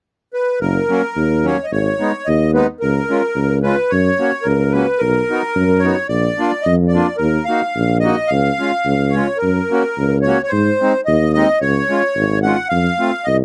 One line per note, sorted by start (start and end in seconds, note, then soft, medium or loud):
0.34 0.59 B4 medium
0.60 0.79 F#1 medium
0.60 1.46 A#4 medium
0.88 1.01 F#3 medium
0.88 1.02 A#3 soft
0.88 1.02 C#4 medium
1.16 1.52 D#2 medium
1.44 1.56 F#3 medium
1.44 1.57 A#3 medium
1.44 1.57 C#4 medium
1.44 1.66 C#5 medium
1.64 1.71 D#5 soft
1.72 1.90 G#1 medium
1.72 2.28 C#5 medium
1.99 2.11 G#3 soft
1.99 2.12 B3 medium
1.99 2.12 D#4 medium
2.25 2.63 D#2 medium
2.25 2.51 D#5 medium
2.54 2.66 G#3 medium
2.54 2.66 B3 medium
2.54 2.67 D#4 medium
2.54 2.67 B4 medium
2.80 3.00 C#2 medium
2.80 3.59 A#4 medium
3.09 3.21 G#3 medium
3.09 3.22 C#4 soft
3.09 3.22 F4 medium
3.35 3.71 C#2 medium
3.63 3.75 G#3 medium
3.63 3.76 C#4 soft
3.63 3.76 F4 medium
3.63 3.91 B4 medium
3.90 4.09 F#2 medium
3.90 4.47 C#5 medium
4.19 4.31 A#3 soft
4.19 4.31 C#4 medium
4.19 4.32 F#4 medium
4.42 4.81 C#2 medium
4.42 4.73 A#4 medium
4.72 4.86 A#3 soft
4.72 4.86 C#4 soft
4.72 4.87 F#4 medium
4.72 5.01 B4 medium
4.98 5.19 B1 medium
4.98 5.85 A#4 medium
5.30 5.42 B3 soft
5.30 5.42 D#4 soft
5.30 5.42 F#4 medium
5.56 5.92 F#2 medium
5.79 5.96 B3 medium
5.79 6.07 C#5 medium
5.84 5.96 D#4 soft
5.84 5.96 F#4 medium
6.09 6.28 A#1 medium
6.09 6.67 D5 medium
6.38 6.51 A#3 medium
6.38 6.51 D4 soft
6.38 6.52 F4 medium
6.62 7.02 F2 medium
6.62 6.75 D#5 medium
6.88 7.16 D5 medium
6.94 7.06 A#3 soft
6.94 7.07 D4 soft
6.94 7.07 F4 medium
7.17 7.38 D#2 medium
7.17 7.45 A#4 medium
7.45 7.61 A#3 medium
7.45 7.97 F5 medium
7.50 7.62 D#4 soft
7.50 7.61 F#4 medium
7.75 8.11 A#1 medium
8.00 8.15 A#3 medium
8.00 8.30 D#5 medium
8.04 8.16 D#4 medium
8.04 8.16 F#4 medium
8.27 8.49 C#2 medium
8.27 9.15 F5 loud
8.59 8.71 G#3 medium
8.59 8.71 C#4 medium
8.59 8.72 F4 medium
8.85 9.21 C#2 medium
9.10 9.38 C#5 medium
9.14 9.27 G#3 medium
9.14 9.27 C#4 medium
9.14 9.27 F4 medium
9.37 10.18 A#4 medium
9.42 9.60 F#2 medium
9.70 9.82 A#3 medium
9.70 9.83 C#4 medium
9.70 9.83 F#4 medium
9.97 10.33 C#2 medium
10.22 10.42 C#5 medium
10.26 10.38 A#3 medium
10.26 10.38 C#4 soft
10.26 10.39 F#4 medium
10.43 10.51 C#5 medium
10.48 10.70 G#2 medium
10.48 11.01 C5 medium
10.81 10.92 G#3 medium
10.81 10.93 C4 soft
10.81 10.93 D#4 medium
11.05 11.43 D#2 medium
11.05 11.31 D#5 medium
11.33 11.47 G#3 medium
11.33 11.47 C4 medium
11.33 11.48 D#4 medium
11.33 11.59 D#5 medium
11.61 11.79 C#2 medium
11.61 12.39 C#5 medium
11.88 12.01 G#3 medium
11.88 12.02 C#4 soft
11.88 12.02 F4 medium
12.16 12.51 G#1 medium
12.42 12.56 G#3 medium
12.42 12.56 C#4 medium
12.42 12.57 F4 medium
12.42 12.68 F#5 medium
12.69 12.88 F2 medium
12.69 13.26 F5 loud
12.99 13.10 A3 medium
12.99 13.11 C4 soft
12.99 13.11 F4 medium
13.24 13.45 C2 medium
13.24 13.37 D#5 medium